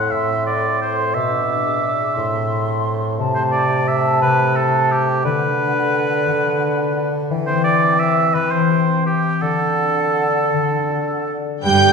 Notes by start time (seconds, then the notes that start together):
Already playing: A2 C4 E4 A4 C5 F#5 C6
0.11 A2 E5 C6
0.28 C4
0.46 E4 D5
0.64 A4
0.81 C5 C6
0.98 A4
1.14 B2 E5 D6
1.30 D4
1.47 E4
1.65 G#4
1.83 D5
2.00 G#4
2.16 A2 C6
2.33 C4
2.51 E4
2.68 A4
2.85 C5
3.02 A4
3.19 C3 A5
3.35 A3 C5
3.52 E4 D5
3.70 G4
3.88 A4 E5 A5
4.05 G4
4.22 C3 B4
4.38 A3
4.56 E4 A4 A5
4.74 G4
4.91 G4 A4 A5
5.08 G4 G5
5.24 D3 B4 F#5
5.41 D4
5.59 F#4
5.76 A4
5.94 D5
6.11 A4
6.27 D3
6.43 D4
6.61 F#4
6.79 A4
6.97 D5
7.13 A4
7.30 E3 G5
7.47 C4 C5
7.64 G4 D5
7.83 C4
8.00 C5 E5 G5
8.18 G4
8.34 E3 B4
8.51 C4 C5
8.70 G4
8.88 C4
9.06 G4 C5 G5
9.24 G4
9.42 D3 A4 F#5
9.60 D4
9.79 F#4
9.98 A4
10.17 D5
10.35 A4
10.53 D3
10.71 D4
10.90 F#4
11.09 A4
11.28 D5
11.46 A4
11.63 G2 D3 G3 G4 B4 G5 G6
11.81 B3